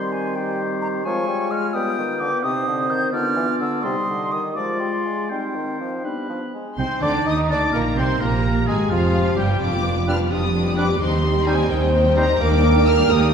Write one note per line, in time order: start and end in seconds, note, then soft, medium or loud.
0.00 1.02 D#3 medium
0.00 1.00 G3 soft
0.00 1.05 C4 medium
0.00 0.34 G4 soft
0.00 0.35 C5 medium
0.00 0.14 C6 medium
0.12 0.37 G#5 medium
0.35 1.03 G4 medium
0.35 1.04 C5 medium
0.35 0.61 G5 medium
0.82 0.88 A#5 medium
1.04 1.29 F3 medium
1.04 1.74 G#3 medium
1.04 2.41 F4 medium
1.04 1.71 C#5 medium
1.04 1.70 G#5 soft
1.04 1.52 C#6 medium
1.27 1.50 G3 medium
1.51 1.73 G#3 medium
1.51 1.75 F6 medium
1.74 1.97 G3 medium
1.74 2.43 B3 medium
1.74 2.45 B4 medium
1.74 2.44 G5 medium
1.74 2.22 D#6 medium
1.98 2.20 D#3 soft
2.20 2.31 D3 medium
2.20 2.42 D6 medium
2.42 2.66 C3 medium
2.42 3.13 C4 medium
2.42 3.11 D#4 medium
2.42 3.15 C5 medium
2.42 3.12 D#5 medium
2.42 2.92 D#6 medium
2.67 2.89 D3 medium
2.90 3.12 D#3 medium
2.90 3.12 G6 medium
3.12 3.36 D3 medium
3.12 3.84 B3 medium
3.12 3.84 D4 medium
3.12 3.87 F4 medium
3.12 3.87 D5 medium
3.12 3.59 F6 medium
3.36 3.47 E3 medium
3.60 3.84 D3 medium
3.60 3.84 E6 medium
3.83 3.95 C3 medium
3.83 4.56 G3 medium
3.83 4.55 D#4 medium
3.83 4.57 G4 soft
3.83 4.39 D#5 soft
3.83 4.33 C6 medium
4.08 4.32 D3 medium
4.32 4.56 D#3 medium
4.32 4.54 D#6 medium
4.55 4.79 F3 soft
4.55 5.28 G#3 soft
4.55 5.13 F4 soft
4.55 5.29 F4 soft
4.55 5.31 D5 soft
4.55 4.81 D6 medium
4.80 4.91 G3 soft
4.80 5.29 C6 medium
5.05 5.31 G#3 soft
5.29 5.57 G3 soft
5.29 6.04 C4 soft
5.29 6.07 D#4 soft
5.29 6.03 D#4 soft
5.29 6.06 C5 soft
5.29 6.03 G5 medium
5.55 5.80 D#3 soft
5.80 6.04 F3 soft
6.04 6.29 G3 soft
6.04 6.53 B3 soft
6.04 6.52 D4 soft
6.04 6.54 D4 soft
6.04 6.53 B4 soft
6.30 6.40 F3 soft
6.54 6.78 G#3 soft
6.77 6.86 C2 medium
6.77 6.86 C3 medium
6.77 7.01 C4 soft
6.77 7.04 C4 medium
6.77 8.18 D#4 medium
6.77 7.04 C5 medium
6.77 7.01 C5 medium
6.77 7.00 C6 medium
6.77 7.01 C6 soft
7.02 7.26 D2 soft
7.02 7.26 D3 medium
7.02 7.29 D4 medium
7.02 7.27 D4 soft
7.02 7.13 D5 soft
7.02 7.27 D5 medium
7.02 7.28 D5 medium
7.02 7.26 D6 medium
7.02 7.08 D6 medium
7.26 7.50 D#2 medium
7.26 7.50 D#3 medium
7.26 7.50 D#4 medium
7.26 7.52 D#4 medium
7.26 7.37 D#5 medium
7.26 7.49 D#5 soft
7.26 7.35 D#5 medium
7.26 7.53 D#6 soft
7.26 7.37 D#6 medium
7.50 7.74 D2 medium
7.50 7.74 D3 medium
7.50 7.74 D4 medium
7.50 7.59 D4 medium
7.50 7.72 D5 medium
7.50 7.73 D5 medium
7.50 7.60 D5 medium
7.50 7.75 D6 medium
7.72 7.97 A#1 medium
7.72 7.97 A#2 medium
7.72 7.97 A#3 medium
7.72 7.97 A#3 soft
7.72 7.83 A#4 medium
7.72 7.99 A#4 medium
7.72 7.82 A#5 medium
7.72 7.98 A#5 medium
7.97 8.21 C2 medium
7.97 8.21 C3 medium
7.97 8.21 C4 medium
7.97 8.09 C4 medium
7.97 8.21 C5 medium
7.97 8.21 C5 soft
7.97 8.21 C5 medium
7.97 8.22 C6 medium
7.97 8.24 C6 medium
8.20 8.67 A#1 medium
8.20 8.66 A#2 medium
8.20 8.67 A#3 medium
8.20 9.59 G4 medium
8.20 8.68 A#4 medium
8.20 8.67 A#4 medium
8.20 8.67 A#4 soft
8.20 8.68 A#5 medium
8.67 8.91 G#1 medium
8.67 8.91 G#2 medium
8.67 8.90 G#3 medium
8.67 8.78 G#3 medium
8.67 8.91 G#4 medium
8.67 8.76 G#4 medium
8.67 8.78 G#4 medium
8.67 8.90 G#5 medium
8.67 8.94 G#5 medium
8.89 9.37 F1 medium
8.89 9.36 F2 medium
8.89 9.37 F3 medium
8.89 9.39 F3 medium
8.89 9.36 F4 medium
8.89 9.37 F4 medium
8.89 9.37 F5 medium
8.89 9.39 F5 medium
9.36 9.61 G1 medium
9.36 9.61 G2 medium
9.36 9.61 G3 medium
9.36 9.60 G4 medium
9.36 9.61 G4 medium
9.36 9.62 G5 medium
9.60 10.23 F1 medium
9.60 10.23 F2 soft
9.60 9.72 F3 soft
9.60 9.72 D4 soft
9.60 10.31 F4 medium
9.60 9.72 F4 soft
9.60 9.72 B4 soft
9.60 10.08 D6 medium
9.72 9.85 G3 soft
9.72 9.85 B3 soft
9.72 9.84 G4 soft
9.72 9.84 D5 soft
9.85 9.97 F3 soft
9.85 9.97 D4 soft
9.85 9.97 F4 soft
9.85 9.97 B4 soft
9.96 10.08 G3 soft
9.96 10.08 B3 soft
9.96 10.08 G4 soft
9.96 10.08 D5 soft
10.07 10.19 F3 soft
10.07 10.16 G3 medium
10.07 10.16 D4 medium
10.07 10.19 D4 soft
10.07 10.19 F4 soft
10.07 10.16 B4 soft
10.07 10.19 B4 soft
10.07 10.19 G5 soft
10.07 10.17 F6 medium
10.19 10.32 G3 soft
10.19 10.32 B3 soft
10.19 10.32 G4 soft
10.19 10.32 D5 soft
10.31 10.92 F1 medium
10.31 10.92 F2 medium
10.31 10.43 F3 soft
10.31 10.43 D4 soft
10.31 10.44 F4 soft
10.31 10.99 G4 medium
10.31 10.44 B4 soft
10.31 10.77 D#6 medium
10.43 10.55 G3 soft
10.43 10.55 B3 soft
10.43 10.55 G4 soft
10.43 10.55 D5 soft
10.54 10.65 F3 soft
10.54 10.65 D4 soft
10.54 10.66 F4 soft
10.54 10.66 B4 soft
10.65 10.78 G3 soft
10.65 10.77 B3 soft
10.65 10.78 G4 soft
10.65 10.78 D5 soft
10.76 10.88 F3 medium
10.76 10.85 G3 medium
10.76 10.88 D4 soft
10.76 10.85 D4 soft
10.76 10.89 F4 soft
10.76 10.85 B4 medium
10.76 10.89 B4 soft
10.76 10.89 G5 medium
10.76 11.00 D6 medium
10.88 11.00 G3 soft
10.88 11.00 B3 soft
10.88 11.00 G4 soft
10.88 11.01 D5 medium
10.99 11.62 D#2 medium
10.99 11.11 D#3 soft
10.99 11.11 D#4 soft
10.99 11.11 D#4 medium
10.99 11.69 G4 medium
10.99 11.11 C5 medium
10.99 11.46 C6 medium
11.11 11.23 G3 soft
11.11 11.23 C4 soft
11.11 11.24 G4 soft
11.11 11.24 D#5 soft
11.23 11.35 D#3 soft
11.23 11.35 D#4 soft
11.23 11.35 C5 soft
11.34 11.46 G3 medium
11.34 11.46 C4 medium
11.34 11.47 G4 medium
11.34 11.47 D#5 soft
11.46 11.57 D#3 medium
11.46 11.55 G3 medium
11.46 11.57 D#4 soft
11.46 11.58 D#4 medium
11.46 11.55 D#4 medium
11.46 11.55 C5 medium
11.46 11.58 C5 soft
11.46 11.58 G5 medium
11.46 11.70 G#5 medium
11.57 11.70 G3 soft
11.57 11.70 C4 soft
11.57 11.71 G4 soft
11.57 11.71 D#5 soft
11.69 12.32 D#2 medium
11.69 11.81 D#3 medium
11.69 11.81 D#4 medium
11.69 11.82 D#4 medium
11.69 12.38 C5 medium
11.69 11.82 C5 medium
11.69 12.18 G5 medium
11.80 11.93 G3 medium
11.80 11.93 C4 medium
11.80 11.94 G4 soft
11.80 11.94 D#5 medium
11.92 12.04 D#3 medium
11.92 12.04 D#4 medium
11.92 12.05 D#4 soft
11.92 12.05 C5 soft
12.04 12.17 G3 soft
12.04 12.16 C4 soft
12.04 12.17 G4 medium
12.04 12.17 D#5 soft
12.16 12.28 D#3 medium
12.16 12.25 G3 medium
12.16 12.28 D#4 medium
12.16 12.25 D#4 medium
12.16 12.29 D#4 medium
12.16 12.25 C5 medium
12.16 12.29 C5 medium
12.16 12.28 G5 medium
12.16 12.39 A#5 medium
12.27 12.39 G3 soft
12.27 12.39 C4 soft
12.27 12.41 G4 soft
12.27 12.41 D#5 medium
12.39 13.01 D#2 medium
12.39 12.50 A#3 medium
12.39 13.34 A#3 medium
12.39 12.52 D4 medium
12.39 12.50 D#4 medium
12.39 13.34 D#4 medium
12.39 13.34 A#4 medium
12.39 13.10 A#4 medium
12.39 12.51 A#4 medium
12.39 13.34 G5 medium
12.39 12.86 D6 medium
12.50 12.63 G3 medium
12.50 12.63 D4 medium
12.50 12.64 G4 medium
12.50 12.63 D5 medium
12.63 12.75 A#3 soft
12.63 12.75 D4 medium
12.63 12.75 D#4 medium
12.63 12.75 A#4 medium
12.74 12.86 G3 medium
12.74 12.86 D4 medium
12.74 12.87 G4 medium
12.74 12.86 D5 medium
12.85 12.97 A#3 medium
12.85 12.97 D4 medium
12.85 12.97 D#4 medium
12.85 12.97 A#4 soft
12.85 13.10 F6 medium
12.97 13.09 G3 medium
12.97 13.09 D4 medium
12.97 13.10 G4 medium
12.97 13.10 D5 medium
13.08 13.34 D#2 medium
13.08 13.21 A#3 medium
13.08 13.21 D4 medium
13.08 13.21 D#4 medium
13.08 13.34 G4 medium
13.08 13.21 A#4 medium
13.08 13.34 D#6 medium
13.21 13.33 G3 medium
13.21 13.33 D4 medium
13.21 13.33 G4 medium
13.21 13.33 D5 medium